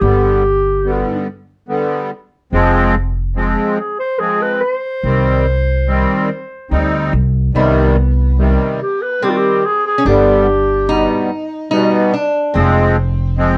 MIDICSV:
0, 0, Header, 1, 5, 480
1, 0, Start_track
1, 0, Key_signature, -3, "minor"
1, 0, Tempo, 835655
1, 9, Time_signature, 3, 2, 24, 8
1, 7798, End_track
2, 0, Start_track
2, 0, Title_t, "Clarinet"
2, 0, Program_c, 0, 71
2, 4, Note_on_c, 0, 67, 77
2, 706, Note_off_c, 0, 67, 0
2, 2177, Note_on_c, 0, 68, 60
2, 2288, Note_off_c, 0, 68, 0
2, 2294, Note_on_c, 0, 72, 84
2, 2408, Note_on_c, 0, 68, 84
2, 2416, Note_off_c, 0, 72, 0
2, 2540, Note_on_c, 0, 71, 86
2, 2548, Note_off_c, 0, 68, 0
2, 2647, Note_on_c, 0, 72, 87
2, 2656, Note_off_c, 0, 71, 0
2, 4092, Note_off_c, 0, 72, 0
2, 5066, Note_on_c, 0, 67, 69
2, 5181, Note_on_c, 0, 71, 83
2, 5190, Note_off_c, 0, 67, 0
2, 5307, Note_on_c, 0, 67, 83
2, 5315, Note_off_c, 0, 71, 0
2, 5339, Note_on_c, 0, 65, 66
2, 5348, Note_off_c, 0, 67, 0
2, 5380, Note_on_c, 0, 67, 84
2, 5389, Note_off_c, 0, 65, 0
2, 5548, Note_on_c, 0, 68, 84
2, 5557, Note_off_c, 0, 67, 0
2, 5660, Note_off_c, 0, 68, 0
2, 5666, Note_on_c, 0, 68, 82
2, 5785, Note_on_c, 0, 67, 83
2, 5793, Note_off_c, 0, 68, 0
2, 6497, Note_off_c, 0, 67, 0
2, 7798, End_track
3, 0, Start_track
3, 0, Title_t, "Resonator guitar played with a steel bar"
3, 0, Program_c, 1, 25
3, 4341, Note_on_c, 1, 59, 69
3, 5299, Note_on_c, 1, 60, 80
3, 5325, Note_off_c, 1, 59, 0
3, 5730, Note_off_c, 1, 60, 0
3, 5733, Note_on_c, 1, 61, 80
3, 5772, Note_off_c, 1, 61, 0
3, 5777, Note_on_c, 1, 62, 78
3, 6254, Note_on_c, 1, 63, 104
3, 6268, Note_off_c, 1, 62, 0
3, 6718, Note_off_c, 1, 63, 0
3, 6725, Note_on_c, 1, 63, 100
3, 6968, Note_off_c, 1, 63, 0
3, 6971, Note_on_c, 1, 62, 70
3, 7202, Note_on_c, 1, 60, 62
3, 7216, Note_off_c, 1, 62, 0
3, 7798, Note_off_c, 1, 60, 0
3, 7798, End_track
4, 0, Start_track
4, 0, Title_t, "Accordion"
4, 0, Program_c, 2, 21
4, 8, Note_on_c, 2, 50, 74
4, 8, Note_on_c, 2, 59, 73
4, 9, Note_on_c, 2, 55, 71
4, 249, Note_off_c, 2, 50, 0
4, 249, Note_off_c, 2, 59, 0
4, 250, Note_off_c, 2, 55, 0
4, 488, Note_on_c, 2, 59, 61
4, 489, Note_on_c, 2, 55, 48
4, 490, Note_on_c, 2, 50, 58
4, 730, Note_off_c, 2, 59, 0
4, 731, Note_off_c, 2, 50, 0
4, 731, Note_off_c, 2, 55, 0
4, 967, Note_on_c, 2, 55, 61
4, 967, Note_on_c, 2, 59, 65
4, 968, Note_on_c, 2, 50, 75
4, 1210, Note_off_c, 2, 55, 0
4, 1210, Note_off_c, 2, 59, 0
4, 1211, Note_off_c, 2, 50, 0
4, 1451, Note_on_c, 2, 53, 91
4, 1451, Note_on_c, 2, 56, 78
4, 1451, Note_on_c, 2, 60, 111
4, 1693, Note_off_c, 2, 53, 0
4, 1693, Note_off_c, 2, 56, 0
4, 1693, Note_off_c, 2, 60, 0
4, 1931, Note_on_c, 2, 53, 66
4, 1931, Note_on_c, 2, 56, 67
4, 1932, Note_on_c, 2, 60, 76
4, 2173, Note_off_c, 2, 53, 0
4, 2173, Note_off_c, 2, 56, 0
4, 2174, Note_off_c, 2, 60, 0
4, 2412, Note_on_c, 2, 53, 57
4, 2413, Note_on_c, 2, 56, 56
4, 2414, Note_on_c, 2, 60, 62
4, 2654, Note_off_c, 2, 53, 0
4, 2654, Note_off_c, 2, 56, 0
4, 2655, Note_off_c, 2, 60, 0
4, 2895, Note_on_c, 2, 51, 73
4, 2895, Note_on_c, 2, 55, 68
4, 2896, Note_on_c, 2, 60, 80
4, 3135, Note_off_c, 2, 51, 0
4, 3136, Note_off_c, 2, 55, 0
4, 3136, Note_off_c, 2, 60, 0
4, 3374, Note_on_c, 2, 55, 61
4, 3376, Note_on_c, 2, 51, 58
4, 3376, Note_on_c, 2, 60, 84
4, 3615, Note_off_c, 2, 55, 0
4, 3616, Note_off_c, 2, 51, 0
4, 3616, Note_off_c, 2, 60, 0
4, 3853, Note_on_c, 2, 55, 60
4, 3853, Note_on_c, 2, 60, 71
4, 3854, Note_on_c, 2, 63, 66
4, 4094, Note_off_c, 2, 55, 0
4, 4094, Note_off_c, 2, 60, 0
4, 4095, Note_off_c, 2, 63, 0
4, 4332, Note_on_c, 2, 55, 93
4, 4333, Note_on_c, 2, 48, 104
4, 4333, Note_on_c, 2, 51, 83
4, 4574, Note_off_c, 2, 48, 0
4, 4574, Note_off_c, 2, 51, 0
4, 4574, Note_off_c, 2, 55, 0
4, 4816, Note_on_c, 2, 51, 74
4, 4817, Note_on_c, 2, 48, 78
4, 4817, Note_on_c, 2, 55, 66
4, 5055, Note_off_c, 2, 48, 0
4, 5055, Note_off_c, 2, 51, 0
4, 5056, Note_off_c, 2, 55, 0
4, 5294, Note_on_c, 2, 51, 58
4, 5295, Note_on_c, 2, 55, 60
4, 5295, Note_on_c, 2, 60, 64
4, 5533, Note_off_c, 2, 51, 0
4, 5534, Note_off_c, 2, 55, 0
4, 5534, Note_off_c, 2, 60, 0
4, 5774, Note_on_c, 2, 55, 75
4, 5774, Note_on_c, 2, 59, 87
4, 5775, Note_on_c, 2, 50, 74
4, 6013, Note_off_c, 2, 50, 0
4, 6013, Note_off_c, 2, 55, 0
4, 6013, Note_off_c, 2, 59, 0
4, 6250, Note_on_c, 2, 59, 63
4, 6251, Note_on_c, 2, 47, 67
4, 6253, Note_on_c, 2, 55, 58
4, 6490, Note_off_c, 2, 59, 0
4, 6491, Note_off_c, 2, 47, 0
4, 6491, Note_off_c, 2, 55, 0
4, 6728, Note_on_c, 2, 55, 70
4, 6728, Note_on_c, 2, 59, 90
4, 6729, Note_on_c, 2, 47, 69
4, 6968, Note_off_c, 2, 55, 0
4, 6968, Note_off_c, 2, 59, 0
4, 6969, Note_off_c, 2, 47, 0
4, 7207, Note_on_c, 2, 60, 96
4, 7208, Note_on_c, 2, 53, 92
4, 7208, Note_on_c, 2, 56, 86
4, 7447, Note_off_c, 2, 53, 0
4, 7447, Note_off_c, 2, 56, 0
4, 7447, Note_off_c, 2, 60, 0
4, 7685, Note_on_c, 2, 56, 67
4, 7686, Note_on_c, 2, 53, 75
4, 7686, Note_on_c, 2, 60, 89
4, 7798, Note_off_c, 2, 53, 0
4, 7798, Note_off_c, 2, 56, 0
4, 7798, Note_off_c, 2, 60, 0
4, 7798, End_track
5, 0, Start_track
5, 0, Title_t, "Upright bass"
5, 0, Program_c, 3, 32
5, 8, Note_on_c, 3, 31, 81
5, 586, Note_off_c, 3, 31, 0
5, 1451, Note_on_c, 3, 29, 64
5, 2029, Note_off_c, 3, 29, 0
5, 2892, Note_on_c, 3, 36, 66
5, 3469, Note_off_c, 3, 36, 0
5, 3856, Note_on_c, 3, 38, 72
5, 4073, Note_off_c, 3, 38, 0
5, 4096, Note_on_c, 3, 36, 80
5, 4312, Note_off_c, 3, 36, 0
5, 4336, Note_on_c, 3, 36, 80
5, 4911, Note_off_c, 3, 36, 0
5, 5774, Note_on_c, 3, 31, 74
5, 6348, Note_off_c, 3, 31, 0
5, 7211, Note_on_c, 3, 29, 92
5, 7784, Note_off_c, 3, 29, 0
5, 7798, End_track
0, 0, End_of_file